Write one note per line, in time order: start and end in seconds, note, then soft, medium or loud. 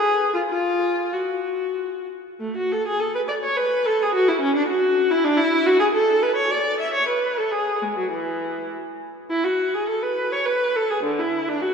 0.00 0.33 G#4 medium
0.34 0.40 F4 medium
0.50 1.10 F4 medium
1.12 2.07 F#4 soft
2.40 2.56 A3 medium
2.57 2.72 F#4 medium
2.72 2.87 A4 medium
2.87 3.01 G#4 medium
3.00 3.15 A4 medium
3.15 3.21 B4 medium
3.28 3.34 D5 medium
3.44 3.58 C#5 medium
3.57 3.86 B4 medium
3.86 4.00 A4 medium
4.02 4.16 G#4 medium
4.15 4.29 F#4 medium
4.28 4.43 E4 medium
4.40 4.56 C#4 medium
4.56 4.70 D4 medium
4.68 5.10 F#4 medium
5.11 5.26 E4 medium
5.25 5.39 D4 medium
5.37 5.66 E4 medium
5.66 5.80 F#4 medium
5.80 5.85 G#4 medium
5.94 6.22 A4 medium
6.23 6.37 B4 medium
6.36 6.50 C#5 medium
6.51 6.79 D5 medium
6.80 6.94 E5 medium
6.94 7.08 C#5 medium
7.08 7.37 B4 medium
7.38 7.52 A4 medium
7.51 7.81 G#4 medium
7.82 7.97 G#3 medium
7.97 8.12 F#3 medium
8.12 8.71 E3 soft
9.30 9.44 E4 medium
9.44 9.74 F#4 medium
9.74 9.89 G#4 medium
9.89 10.04 A4 medium
10.02 10.32 B4 medium
10.32 10.47 C#5 medium
10.46 10.76 B4 medium
10.76 10.90 A4 medium
10.90 11.05 G#4 medium
11.04 11.18 D3 medium
11.19 11.47 E4 medium
11.49 11.62 D4 medium
11.62 11.74 F#4 medium